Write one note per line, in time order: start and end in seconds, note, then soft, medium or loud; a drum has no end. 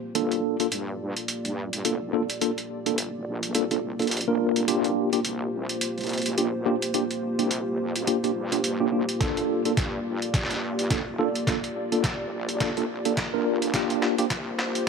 0.00 0.11 A#3 medium
0.00 0.11 F4 medium
0.00 0.11 G4 medium
0.00 0.11 C5 medium
0.15 0.42 G1 medium
0.15 0.56 A#3 medium
0.15 13.70 A#3 medium
0.15 0.56 D4 medium
0.15 0.56 F4 medium
0.15 13.70 F4 medium
0.15 13.70 G4 medium
0.15 0.56 A4 loud
0.15 4.64 D5 medium
0.15 closed hi-hat medium
0.32 closed hi-hat soft
0.60 0.66 A#3 medium
0.60 0.66 D4 medium
0.60 0.66 F4 medium
0.60 0.66 A4 medium
0.60 closed hi-hat soft
0.71 1.14 G2 medium
0.71 closed hi-hat medium
1.17 closed hi-hat medium
1.28 closed hi-hat medium
1.45 1.71 G2 loud
1.45 closed hi-hat soft
1.73 1.83 G2 medium
1.73 closed hi-hat soft
1.85 2.27 F1 loud
1.85 1.93 A#3 medium
1.85 1.93 D4 medium
1.85 1.93 F4 medium
1.85 1.93 A4 medium
1.85 closed hi-hat medium
2.13 2.22 A#3 medium
2.13 2.22 D4 medium
2.13 2.22 F4 medium
2.13 2.22 A4 loud
2.30 closed hi-hat soft
2.41 2.50 A#3 medium
2.41 2.50 D4 medium
2.41 2.50 F4 medium
2.41 2.50 A4 medium
2.41 closed hi-hat medium
2.58 closed hi-hat soft
2.86 3.25 G1 medium
2.86 2.96 A#3 medium
2.86 2.96 D4 medium
2.86 2.96 F4 medium
2.86 2.96 A4 medium
2.86 closed hi-hat soft
2.98 closed hi-hat medium
3.26 3.53 A#1 medium
3.43 closed hi-hat medium
3.55 3.97 C2 medium
3.55 3.63 A#3 medium
3.55 3.63 D4 medium
3.55 3.63 F4 medium
3.55 3.63 A4 loud
3.55 closed hi-hat medium
3.71 3.77 A#3 medium
3.71 3.77 D4 medium
3.71 3.77 F4 medium
3.71 3.77 A4 medium
3.71 closed hi-hat soft
3.99 4.25 A#1 loud
3.99 4.06 A#3 medium
3.99 4.06 D4 medium
3.99 4.06 F4 medium
3.99 4.06 A4 medium
3.99 closed hi-hat soft
4.02 closed hi-hat soft
4.07 closed hi-hat soft
4.11 closed hi-hat medium
4.17 closed hi-hat soft
4.21 closed hi-hat soft
4.28 4.66 F1 loud
4.28 4.65 A#3 medium
4.28 4.65 D4 medium
4.28 4.65 F4 medium
4.28 4.65 A#4 loud
4.56 closed hi-hat soft
4.68 4.94 C2 medium
4.68 5.09 A#3 medium
4.68 5.09 D4 medium
4.68 5.09 F4 medium
4.68 5.09 G4 loud
4.68 9.17 C5 medium
4.68 closed hi-hat medium
4.84 closed hi-hat soft
5.13 5.19 A#3 medium
5.13 5.19 D4 medium
5.13 5.19 F4 medium
5.13 5.19 G4 medium
5.13 closed hi-hat medium
5.24 5.67 C2 loud
5.24 closed hi-hat medium
5.69 closed hi-hat medium
5.81 closed hi-hat medium
5.98 6.23 C2 loud
5.98 closed hi-hat soft
6.01 closed hi-hat soft
6.04 closed hi-hat soft
6.07 closed hi-hat soft
6.09 closed hi-hat soft
6.13 closed hi-hat soft
6.18 closed hi-hat soft
6.22 closed hi-hat soft
6.26 6.36 C2 loud
6.26 closed hi-hat medium
6.38 6.80 A#1 loud
6.38 6.46 A#3 medium
6.38 6.46 D4 medium
6.38 6.46 F4 medium
6.38 6.46 G4 medium
6.38 closed hi-hat medium
6.66 6.74 A#3 medium
6.66 6.75 D4 medium
6.66 6.75 F4 medium
6.66 6.74 G4 loud
6.82 closed hi-hat medium
6.94 7.03 A#3 medium
6.94 7.03 D4 medium
6.94 7.03 F4 medium
6.94 7.03 G4 loud
6.94 closed hi-hat medium
7.11 closed hi-hat soft
7.39 7.77 C2 medium
7.39 7.49 A#3 medium
7.39 7.49 D4 medium
7.39 7.49 F4 medium
7.39 7.49 G4 medium
7.39 closed hi-hat soft
7.51 closed hi-hat medium
7.79 8.06 F2 loud
7.96 closed hi-hat soft
8.07 8.16 A#3 medium
8.07 8.16 D4 medium
8.07 8.16 F4 medium
8.07 8.16 G4 loud
8.07 closed hi-hat medium
8.24 8.30 A#3 medium
8.24 8.30 D4 medium
8.24 8.30 F4 medium
8.24 8.30 G4 medium
8.24 closed hi-hat soft
8.36 8.78 G2 medium
8.52 8.58 A#3 medium
8.52 8.58 D4 medium
8.52 8.58 F4 medium
8.52 8.58 G4 medium
8.52 closed hi-hat soft
8.64 closed hi-hat medium
8.80 9.06 C2 loud
8.80 8.87 A#3 medium
8.80 8.87 D4 medium
8.80 8.87 F4 medium
8.80 8.87 G4 loud
8.92 9.01 A#3 medium
8.92 9.01 D4 medium
8.92 9.01 F4 medium
8.92 9.01 G4 medium
9.09 closed hi-hat medium
9.21 9.47 G1 loud
9.21 9.62 A#3 loud
9.21 9.62 D4 medium
9.21 9.62 F4 medium
9.21 9.62 A4 loud
9.21 13.70 D5 medium
9.21 kick medium
9.21 snare soft
9.21 closed hi-hat medium
9.37 closed hi-hat soft
9.65 9.72 A#3 medium
9.65 9.72 D4 medium
9.65 9.72 F4 medium
9.65 9.72 A4 medium
9.65 closed hi-hat soft
9.77 10.19 G2 medium
9.77 kick loud
9.77 snare medium
9.77 closed hi-hat medium
10.22 closed hi-hat soft
10.34 kick loud
10.34 snare soft
10.34 closed hi-hat medium
10.43 snare soft
10.50 10.76 G2 loud
10.50 snare soft
10.50 closed hi-hat soft
10.79 10.89 G2 medium
10.79 closed hi-hat soft
10.90 11.33 F1 medium
10.90 10.99 A#3 medium
10.90 10.99 D4 medium
10.90 10.99 F4 medium
10.90 10.99 A4 medium
10.90 kick medium
10.90 snare medium
10.90 closed hi-hat medium
11.19 11.27 A#3 medium
11.19 11.27 D4 medium
11.19 11.27 F4 medium
11.19 11.27 A4 loud
11.35 closed hi-hat soft
11.47 11.56 A#3 medium
11.47 11.56 D4 medium
11.47 11.56 F4 medium
11.47 11.56 A4 loud
11.47 kick loud
11.47 snare medium
11.47 closed hi-hat medium
11.64 closed hi-hat soft
11.92 12.30 G1 medium
11.92 12.02 A#3 medium
11.92 12.02 D4 medium
11.92 12.02 F4 medium
11.92 12.02 A4 medium
11.92 closed hi-hat soft
12.04 kick loud
12.04 snare medium
12.04 closed hi-hat medium
12.32 12.59 A#1 loud
12.49 closed hi-hat soft
12.60 13.03 C2 medium
12.60 12.69 A#3 medium
12.60 12.69 D4 medium
12.60 12.69 F4 medium
12.60 12.69 A4 loud
12.60 kick loud
12.60 snare medium
12.60 closed hi-hat medium
12.77 12.83 A#3 medium
12.77 12.83 D4 medium
12.77 12.83 F4 medium
12.77 12.83 A4 medium
12.77 closed hi-hat soft
13.05 13.31 A#1 medium
13.05 13.11 A#3 medium
13.05 13.11 D4 medium
13.05 13.11 F4 medium
13.05 13.11 A4 medium
13.05 closed hi-hat soft
13.17 kick loud
13.17 snare medium
13.17 closed hi-hat medium
13.34 13.72 F1 loud
13.34 13.71 A#3 loud
13.34 13.71 D4 medium
13.34 13.71 F4 medium
13.34 13.71 A#4 loud
13.62 closed hi-hat soft
13.74 14.00 C2 medium
13.74 14.89 A#3 medium
13.74 14.15 A#3 medium
13.74 14.15 D4 medium
13.74 14.89 F4 medium
13.74 14.15 F4 medium
13.74 14.89 G4 medium
13.74 14.15 G4 loud
13.74 14.89 C5 medium
13.74 kick loud
13.74 snare medium
13.74 closed hi-hat medium
13.90 closed hi-hat soft
14.02 snare medium
14.18 14.25 A#3 medium
14.18 14.25 D4 medium
14.18 14.25 F4 medium
14.18 14.25 G4 loud
14.18 closed hi-hat soft
14.30 14.72 C2 medium
14.30 kick loud
14.30 snare medium
14.30 closed hi-hat medium
14.59 snare medium
14.75 closed hi-hat soft